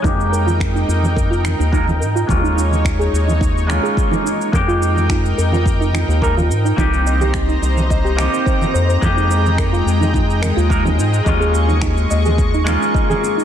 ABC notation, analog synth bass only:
X:1
M:4/4
L:1/16
Q:1/4=107
K:Fm
V:1 name="Analog synth bass" clef=bass
F,,6 F,,4- F,, E,,3 A,,2 | E,,6 E,,4- E,, z4 z | F,,6 F,,4- F,, E,,3 A,,2 | C,,6 C,,4- C,, z3 F,,2 |
F,,6 F,,4- F,, E,,3 A,,2 | E,,6 E,,4- E,, z4 z |]